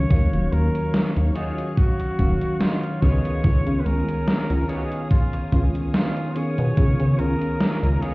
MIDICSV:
0, 0, Header, 1, 8, 480
1, 0, Start_track
1, 0, Tempo, 833333
1, 62, Time_signature, 4, 2, 24, 8
1, 4690, End_track
2, 0, Start_track
2, 0, Title_t, "String section"
2, 0, Program_c, 0, 48
2, 0, Note_on_c, 0, 73, 86
2, 0, Note_on_c, 0, 77, 78
2, 61, Note_on_c, 0, 85, 93
2, 1724, Note_off_c, 0, 85, 0
2, 1739, Note_on_c, 0, 87, 93
2, 1741, Note_on_c, 0, 80, 80
2, 4690, Note_off_c, 0, 73, 0
2, 4690, Note_off_c, 0, 77, 0
2, 4690, Note_off_c, 0, 80, 0
2, 4690, Note_off_c, 0, 87, 0
2, 4690, End_track
3, 0, Start_track
3, 0, Title_t, "Flugelhorn"
3, 0, Program_c, 1, 56
3, 0, Note_on_c, 1, 73, 105
3, 301, Note_on_c, 1, 70, 98
3, 309, Note_off_c, 1, 73, 0
3, 632, Note_off_c, 1, 70, 0
3, 781, Note_on_c, 1, 68, 92
3, 1022, Note_on_c, 1, 66, 97
3, 1030, Note_off_c, 1, 68, 0
3, 1500, Note_on_c, 1, 65, 94
3, 1509, Note_off_c, 1, 66, 0
3, 1742, Note_on_c, 1, 73, 110
3, 1750, Note_off_c, 1, 65, 0
3, 2188, Note_on_c, 1, 71, 76
3, 2196, Note_off_c, 1, 73, 0
3, 2220, Note_on_c, 1, 70, 104
3, 2229, Note_off_c, 1, 71, 0
3, 2699, Note_on_c, 1, 68, 92
3, 2707, Note_off_c, 1, 70, 0
3, 2743, Note_on_c, 1, 66, 78
3, 2751, Note_off_c, 1, 68, 0
3, 2786, Note_on_c, 1, 68, 96
3, 2795, Note_off_c, 1, 66, 0
3, 2935, Note_off_c, 1, 68, 0
3, 2939, Note_on_c, 1, 65, 95
3, 3248, Note_off_c, 1, 65, 0
3, 3419, Note_on_c, 1, 65, 99
3, 3657, Note_on_c, 1, 73, 108
3, 3666, Note_off_c, 1, 65, 0
3, 4140, Note_on_c, 1, 70, 108
3, 4148, Note_off_c, 1, 73, 0
3, 4618, Note_on_c, 1, 68, 106
3, 4627, Note_off_c, 1, 70, 0
3, 4690, Note_off_c, 1, 68, 0
3, 4690, End_track
4, 0, Start_track
4, 0, Title_t, "Clean electric guitar"
4, 0, Program_c, 2, 27
4, 777, Note_on_c, 2, 73, 94
4, 781, Note_on_c, 2, 66, 76
4, 782, Note_on_c, 2, 65, 75
4, 786, Note_on_c, 2, 63, 77
4, 965, Note_off_c, 2, 63, 0
4, 965, Note_off_c, 2, 65, 0
4, 965, Note_off_c, 2, 66, 0
4, 966, Note_off_c, 2, 73, 0
4, 1500, Note_on_c, 2, 63, 85
4, 1502, Note_on_c, 2, 65, 78
4, 1505, Note_on_c, 2, 66, 69
4, 1509, Note_on_c, 2, 73, 81
4, 1631, Note_off_c, 2, 63, 0
4, 1631, Note_off_c, 2, 65, 0
4, 1632, Note_off_c, 2, 66, 0
4, 1632, Note_off_c, 2, 73, 0
4, 1741, Note_on_c, 2, 73, 106
4, 1743, Note_on_c, 2, 71, 84
4, 1745, Note_on_c, 2, 65, 81
4, 1747, Note_on_c, 2, 63, 81
4, 2033, Note_off_c, 2, 63, 0
4, 2033, Note_off_c, 2, 65, 0
4, 2034, Note_off_c, 2, 71, 0
4, 2034, Note_off_c, 2, 73, 0
4, 2701, Note_on_c, 2, 73, 100
4, 2703, Note_on_c, 2, 71, 78
4, 2705, Note_on_c, 2, 65, 76
4, 2708, Note_on_c, 2, 63, 77
4, 2886, Note_off_c, 2, 63, 0
4, 2887, Note_off_c, 2, 65, 0
4, 2887, Note_off_c, 2, 71, 0
4, 2887, Note_off_c, 2, 73, 0
4, 3420, Note_on_c, 2, 63, 91
4, 3423, Note_on_c, 2, 65, 74
4, 3426, Note_on_c, 2, 71, 70
4, 3429, Note_on_c, 2, 73, 85
4, 3551, Note_off_c, 2, 63, 0
4, 3552, Note_off_c, 2, 65, 0
4, 3552, Note_off_c, 2, 71, 0
4, 3552, Note_off_c, 2, 73, 0
4, 4620, Note_on_c, 2, 73, 90
4, 4621, Note_on_c, 2, 71, 70
4, 4623, Note_on_c, 2, 65, 75
4, 4625, Note_on_c, 2, 63, 72
4, 4690, Note_off_c, 2, 63, 0
4, 4690, Note_off_c, 2, 65, 0
4, 4690, Note_off_c, 2, 71, 0
4, 4690, Note_off_c, 2, 73, 0
4, 4690, End_track
5, 0, Start_track
5, 0, Title_t, "Tine electric piano"
5, 0, Program_c, 3, 4
5, 0, Control_c, 3, 64, 127
5, 0, Note_on_c, 3, 51, 96
5, 0, Note_on_c, 3, 54, 88
5, 0, Note_on_c, 3, 61, 87
5, 0, Note_on_c, 3, 77, 88
5, 53, Note_off_c, 3, 51, 0
5, 53, Note_on_c, 3, 51, 86
5, 59, Note_off_c, 3, 54, 0
5, 59, Note_on_c, 3, 54, 79
5, 65, Note_off_c, 3, 61, 0
5, 65, Note_on_c, 3, 61, 79
5, 71, Note_off_c, 3, 77, 0
5, 71, Note_on_c, 3, 77, 97
5, 1231, Note_off_c, 3, 51, 0
5, 1234, Note_off_c, 3, 54, 0
5, 1237, Note_off_c, 3, 61, 0
5, 1240, Note_off_c, 3, 77, 0
5, 1257, Note_on_c, 3, 51, 81
5, 1260, Note_on_c, 3, 54, 75
5, 1263, Note_on_c, 3, 61, 75
5, 1267, Note_on_c, 3, 77, 87
5, 1713, Note_off_c, 3, 51, 0
5, 1714, Note_off_c, 3, 54, 0
5, 1716, Note_off_c, 3, 61, 0
5, 1718, Note_off_c, 3, 77, 0
5, 1737, Note_on_c, 3, 51, 97
5, 1739, Note_on_c, 3, 59, 91
5, 1743, Note_on_c, 3, 61, 86
5, 1745, Note_on_c, 3, 68, 110
5, 1749, Control_c, 3, 64, 0
5, 1855, Control_c, 3, 64, 127
5, 1952, Note_off_c, 3, 51, 0
5, 1954, Note_off_c, 3, 59, 0
5, 1955, Note_off_c, 3, 61, 0
5, 1956, Note_off_c, 3, 68, 0
5, 1973, Note_on_c, 3, 51, 87
5, 1978, Note_on_c, 3, 59, 80
5, 1985, Note_on_c, 3, 61, 80
5, 1990, Note_on_c, 3, 65, 100
5, 3151, Note_off_c, 3, 51, 0
5, 3153, Note_off_c, 3, 59, 0
5, 3157, Note_off_c, 3, 61, 0
5, 3159, Note_off_c, 3, 65, 0
5, 3178, Note_on_c, 3, 51, 81
5, 3181, Note_on_c, 3, 59, 76
5, 3183, Note_on_c, 3, 61, 76
5, 3186, Note_on_c, 3, 65, 92
5, 3633, Note_off_c, 3, 51, 0
5, 3635, Note_off_c, 3, 59, 0
5, 3636, Note_off_c, 3, 61, 0
5, 3637, Note_off_c, 3, 65, 0
5, 3658, Note_on_c, 3, 51, 96
5, 3661, Note_on_c, 3, 59, 90
5, 3664, Note_on_c, 3, 61, 90
5, 3666, Note_on_c, 3, 68, 106
5, 3873, Note_off_c, 3, 51, 0
5, 3874, Note_off_c, 3, 59, 0
5, 3876, Note_off_c, 3, 61, 0
5, 3877, Note_off_c, 3, 68, 0
5, 3892, Note_on_c, 3, 51, 85
5, 3898, Note_on_c, 3, 59, 79
5, 3904, Note_on_c, 3, 61, 82
5, 3909, Note_on_c, 3, 65, 96
5, 4690, Note_off_c, 3, 51, 0
5, 4690, Note_off_c, 3, 59, 0
5, 4690, Note_off_c, 3, 61, 0
5, 4690, Note_off_c, 3, 65, 0
5, 4690, End_track
6, 0, Start_track
6, 0, Title_t, "Analog synth bass"
6, 0, Program_c, 4, 38
6, 62, Note_on_c, 4, 39, 99
6, 161, Note_off_c, 4, 39, 0
6, 191, Note_on_c, 4, 27, 86
6, 275, Note_off_c, 4, 27, 0
6, 301, Note_on_c, 4, 39, 83
6, 400, Note_off_c, 4, 39, 0
6, 671, Note_on_c, 4, 39, 96
6, 755, Note_off_c, 4, 39, 0
6, 1262, Note_on_c, 4, 27, 93
6, 1361, Note_off_c, 4, 27, 0
6, 1742, Note_on_c, 4, 37, 94
6, 1841, Note_off_c, 4, 37, 0
6, 1982, Note_on_c, 4, 37, 99
6, 2081, Note_off_c, 4, 37, 0
6, 2112, Note_on_c, 4, 49, 84
6, 2196, Note_off_c, 4, 49, 0
6, 2222, Note_on_c, 4, 37, 84
6, 2320, Note_off_c, 4, 37, 0
6, 2592, Note_on_c, 4, 37, 98
6, 2676, Note_off_c, 4, 37, 0
6, 3182, Note_on_c, 4, 37, 104
6, 3281, Note_off_c, 4, 37, 0
6, 3793, Note_on_c, 4, 47, 92
6, 3876, Note_off_c, 4, 47, 0
6, 3901, Note_on_c, 4, 37, 101
6, 4000, Note_off_c, 4, 37, 0
6, 4030, Note_on_c, 4, 49, 86
6, 4115, Note_off_c, 4, 49, 0
6, 4142, Note_on_c, 4, 37, 87
6, 4240, Note_off_c, 4, 37, 0
6, 4510, Note_on_c, 4, 37, 96
6, 4595, Note_off_c, 4, 37, 0
6, 4690, End_track
7, 0, Start_track
7, 0, Title_t, "Muted clean electric guitar strokes"
7, 60, Note_on_c, 9, 29, 116
7, 118, Note_off_c, 9, 29, 0
7, 191, Note_on_c, 9, 29, 36
7, 249, Note_off_c, 9, 29, 0
7, 302, Note_on_c, 9, 29, 34
7, 359, Note_off_c, 9, 29, 0
7, 1149, Note_on_c, 9, 29, 111
7, 1207, Note_off_c, 9, 29, 0
7, 1260, Note_on_c, 9, 29, 35
7, 1318, Note_off_c, 9, 29, 0
7, 2109, Note_on_c, 9, 29, 36
7, 2167, Note_off_c, 9, 29, 0
7, 2221, Note_on_c, 9, 29, 32
7, 2278, Note_off_c, 9, 29, 0
7, 3072, Note_on_c, 9, 29, 116
7, 3129, Note_off_c, 9, 29, 0
7, 3179, Note_on_c, 9, 29, 33
7, 3237, Note_off_c, 9, 29, 0
7, 3661, Note_on_c, 9, 29, 30
7, 3718, Note_off_c, 9, 29, 0
7, 3902, Note_on_c, 9, 29, 106
7, 3959, Note_off_c, 9, 29, 0
7, 4033, Note_on_c, 9, 29, 35
7, 4090, Note_off_c, 9, 29, 0
7, 4142, Note_on_c, 9, 29, 34
7, 4200, Note_off_c, 9, 29, 0
7, 4690, End_track
8, 0, Start_track
8, 0, Title_t, "Drums"
8, 61, Note_on_c, 9, 42, 97
8, 62, Note_on_c, 9, 36, 127
8, 119, Note_off_c, 9, 36, 0
8, 119, Note_off_c, 9, 42, 0
8, 192, Note_on_c, 9, 42, 43
8, 249, Note_off_c, 9, 42, 0
8, 303, Note_on_c, 9, 42, 37
8, 360, Note_off_c, 9, 42, 0
8, 432, Note_on_c, 9, 42, 41
8, 490, Note_off_c, 9, 42, 0
8, 541, Note_on_c, 9, 38, 121
8, 541, Note_on_c, 9, 42, 98
8, 599, Note_off_c, 9, 38, 0
8, 599, Note_off_c, 9, 42, 0
8, 671, Note_on_c, 9, 42, 41
8, 729, Note_off_c, 9, 42, 0
8, 781, Note_on_c, 9, 42, 65
8, 839, Note_off_c, 9, 42, 0
8, 912, Note_on_c, 9, 42, 41
8, 969, Note_off_c, 9, 42, 0
8, 1022, Note_on_c, 9, 36, 118
8, 1022, Note_on_c, 9, 42, 100
8, 1079, Note_off_c, 9, 42, 0
8, 1080, Note_off_c, 9, 36, 0
8, 1150, Note_on_c, 9, 42, 41
8, 1208, Note_off_c, 9, 42, 0
8, 1261, Note_on_c, 9, 42, 70
8, 1262, Note_on_c, 9, 36, 64
8, 1319, Note_off_c, 9, 42, 0
8, 1320, Note_off_c, 9, 36, 0
8, 1391, Note_on_c, 9, 42, 42
8, 1449, Note_off_c, 9, 42, 0
8, 1501, Note_on_c, 9, 38, 123
8, 1501, Note_on_c, 9, 42, 101
8, 1559, Note_off_c, 9, 38, 0
8, 1559, Note_off_c, 9, 42, 0
8, 1632, Note_on_c, 9, 42, 43
8, 1690, Note_off_c, 9, 42, 0
8, 1742, Note_on_c, 9, 36, 62
8, 1742, Note_on_c, 9, 42, 68
8, 1800, Note_off_c, 9, 36, 0
8, 1800, Note_off_c, 9, 42, 0
8, 1873, Note_on_c, 9, 42, 42
8, 1930, Note_off_c, 9, 42, 0
8, 1982, Note_on_c, 9, 36, 126
8, 1983, Note_on_c, 9, 42, 94
8, 2040, Note_off_c, 9, 36, 0
8, 2041, Note_off_c, 9, 42, 0
8, 2113, Note_on_c, 9, 42, 42
8, 2170, Note_off_c, 9, 42, 0
8, 2224, Note_on_c, 9, 42, 37
8, 2281, Note_off_c, 9, 42, 0
8, 2353, Note_on_c, 9, 42, 42
8, 2411, Note_off_c, 9, 42, 0
8, 2463, Note_on_c, 9, 38, 122
8, 2463, Note_on_c, 9, 42, 96
8, 2521, Note_off_c, 9, 38, 0
8, 2521, Note_off_c, 9, 42, 0
8, 2593, Note_on_c, 9, 42, 41
8, 2650, Note_off_c, 9, 42, 0
8, 2703, Note_on_c, 9, 42, 66
8, 2761, Note_off_c, 9, 42, 0
8, 2832, Note_on_c, 9, 42, 40
8, 2890, Note_off_c, 9, 42, 0
8, 2942, Note_on_c, 9, 36, 118
8, 2942, Note_on_c, 9, 42, 98
8, 2999, Note_off_c, 9, 42, 0
8, 3000, Note_off_c, 9, 36, 0
8, 3072, Note_on_c, 9, 42, 42
8, 3129, Note_off_c, 9, 42, 0
8, 3182, Note_on_c, 9, 36, 64
8, 3182, Note_on_c, 9, 42, 69
8, 3239, Note_off_c, 9, 42, 0
8, 3240, Note_off_c, 9, 36, 0
8, 3312, Note_on_c, 9, 42, 41
8, 3370, Note_off_c, 9, 42, 0
8, 3422, Note_on_c, 9, 38, 127
8, 3422, Note_on_c, 9, 42, 96
8, 3480, Note_off_c, 9, 38, 0
8, 3480, Note_off_c, 9, 42, 0
8, 3552, Note_on_c, 9, 42, 40
8, 3610, Note_off_c, 9, 42, 0
8, 3662, Note_on_c, 9, 42, 68
8, 3720, Note_off_c, 9, 42, 0
8, 3791, Note_on_c, 9, 42, 42
8, 3848, Note_off_c, 9, 42, 0
8, 3901, Note_on_c, 9, 42, 91
8, 3902, Note_on_c, 9, 36, 124
8, 3958, Note_off_c, 9, 42, 0
8, 3959, Note_off_c, 9, 36, 0
8, 4030, Note_on_c, 9, 42, 41
8, 4088, Note_off_c, 9, 42, 0
8, 4141, Note_on_c, 9, 42, 37
8, 4198, Note_off_c, 9, 42, 0
8, 4271, Note_on_c, 9, 42, 39
8, 4329, Note_off_c, 9, 42, 0
8, 4381, Note_on_c, 9, 38, 123
8, 4381, Note_on_c, 9, 42, 92
8, 4438, Note_off_c, 9, 38, 0
8, 4438, Note_off_c, 9, 42, 0
8, 4512, Note_on_c, 9, 42, 40
8, 4570, Note_off_c, 9, 42, 0
8, 4622, Note_on_c, 9, 42, 61
8, 4680, Note_off_c, 9, 42, 0
8, 4690, End_track
0, 0, End_of_file